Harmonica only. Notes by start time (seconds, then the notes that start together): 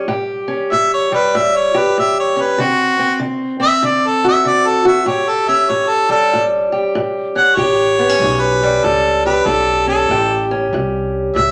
0.72 E5
0.94 C#5
1.15 B4
1.36 E5
1.57 C#5
1.78 B4
2.00 E5
2.20 C#5
2.41 B4
2.62 F#4
3.63 E5
3.86 D5
4.07 A4
4.28 E5
4.48 D5
4.67 A4
4.88 E5
5.07 C#5
5.29 A4
5.48 E5
5.70 C#5
5.89 A4
6.11 A4
7.37 F#5
7.56 C#5
8.41 B4
8.85 A4
9.26 B4
9.47 A4
9.88 A4
11.36 E5